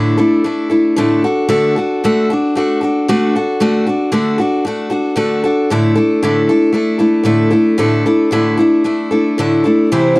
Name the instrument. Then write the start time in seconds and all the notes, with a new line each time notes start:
steel-string acoustic guitar
Already playing: A2 D3 A3 D4 E4 A4
0.18 A3 D4 E4 A4
0.44 A3 D4 E4 A4
0.70 A3 D4 E4 A4
0.96 A2 D3 A3 D4 E4 A4
1.24 D4 F#4 A4
1.49 D3 A3 D4 F#4 A4
1.76 D4 F#4 A4
2.04 D3 A3 D4 F#4 A4
2.30 D4 F#4 A4
2.55 A3 D4 F#4 A4
2.81 D4 F#4 A4
3.08 D3 A3 D4 F#4 A4
3.36 D4 F#4 A4
3.60 D3 A3 D4 F#4 A4
3.86 D4 F#4 A4
4.12 D3 A3 D4 F#4 A4
4.38 D4 F#4 A4
4.65 A3 D4 F#4 A4
4.90 D4 F#4 A4
5.16 D3 A3 D4 F#4 A4
5.44 D4 F#4 A4
5.70 A2 D3 A3 D4 E4 A4
5.95 A3 D4 E4 A4
6.23 A2 D3 A3 D4 E4 A4
6.49 A3 D4 E4 A4
6.73 A3 D4 E4 A4
6.99 A3 D4 E4 A4
7.24 A2 D3 A3 D4 E4 A4
7.50 A3 D4 E4 A4
7.78 A2 D3 A3 D4 E4 A4
8.06 A3 D4 E4 A4
8.31 A2 D3 A3 D4 E4 A4
8.57 A3 D4 E4 A4
8.84 A3 D4 E4 A4
9.11 A3 D4 E4 A4
9.38 A2 D3 A3 D4 E4 A4
9.64 A3 D4 E4 A4
9.92 C3 E3 G3 C4 E4 C5
10.15 C4 E4 C5